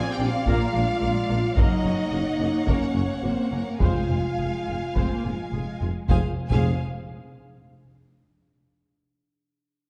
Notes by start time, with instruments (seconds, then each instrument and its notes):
Already playing: cello section C4, french horn section G#4, violin section D5 F5 G#5
0.11 french horn section G4, violin section G5
0.19 double bass section A#1, tuba A#1, viola section A#3 D4
0.29 french horn section F4, violin section F5
0.46 tuba A#1, double bass section A#1, cello section A#3, viola section A#3 A#4, french horn section F4, violin section F5, taiko
0.73 tuba A#1, double bass section A#1, cello section G#3, viola section A#3 D4
1.01 tuba A#1, double bass section A#1, viola section A#3 F4
1.29 tuba A#1, double bass section A#1, viola section A#3 D4
1.57 tuba F#1, double bass section F#1, cello section F#3, viola section A#3 A#4, french horn section D#4, violin section C#5 D#5 F#5, taiko
1.84 tuba F#1, double bass section F#1, viola section A#3 C#4
2.11 tuba F#1, double bass section F#1, cello section A#3, viola section A#3 F#4
2.39 tuba F#1, double bass section F#1, viola section A#3 C#4
2.66 tuba F#1, double bass section F#1, viola section A#3 A#4, french horn section C#4, violin section C#5, taiko
2.94 tuba F#1, double bass section F#1, viola section A#3 C#4
3.22 tuba F#1, double bass section F#1, viola section A#3 F#4, french horn section C4, violin section C5
3.51 tuba F#1, double bass section F#1, viola section A#3 C#4, french horn section A#3, violin section A#4
3.66 french horn section A#3, violin section A#4
3.80 tuba F1, double bass section F1, timpani F2, viola section G#3 C5, cello section G#3, french horn section F4, violin section F5 G#5, taiko
4.09 tuba F1, double bass section F1, viola section G#3 F4
4.38 tuba F1, double bass section F1, viola section G#3 G#4, cello section G#3
4.66 tuba F1, double bass section F1, viola section G#3 F4
4.95 tuba F1, double bass section F1, viola section G#3 C5, cello section C4, taiko
5.14 cello section A#3
5.24 tuba F1, double bass section F1, viola section G#3 F4
5.34 cello section G#3
5.52 tuba F1, double bass section F1, cello section G#3, viola section G#3 G#4
5.81 tuba F1, double bass section F1, viola section G#3 F4
6.08 tuba F1, double bass section F1, timpani F2, cello section F2, viola section G#3 G#4, french horn section F4, violin section C5 F5 G#5, taiko
6.49 tuba F1, double bass section F1, cello section F2, timpani F2, viola section G#3 G#4, violin section C5 F5 G#5, taiko